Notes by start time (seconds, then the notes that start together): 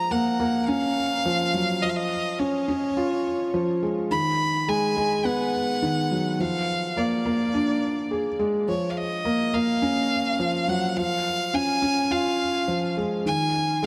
Already playing: F3 A#5
0.11 A#3 F#5
0.40 A#3
0.68 C#4 F5
1.26 F3
1.54 F#3
1.82 F3 D#5
1.89 F5
1.96 D#5
2.40 C#4 C#5
2.68 C#4
2.97 F4
3.54 F3
3.83 G#3
4.11 D#3 B5
4.68 G#3 G#5
4.97 G#3
5.25 B3 F#5
5.82 D#3
6.11 F#3
6.40 F3 F5
6.97 A#3 D5
7.25 A#3
7.54 D4
8.11 G#4
8.39 G#3
8.68 F3 C#5
8.90 F5
8.97 D#5
9.25 A#3
9.54 A#3 F5
9.82 C#4
10.40 F3
10.68 F#3 F#5
10.97 F3 F5
11.54 C#4 G#5
11.82 C#4
12.11 F4 F5
12.68 F3
12.97 G#3
13.26 D#3 G#5
13.83 G#3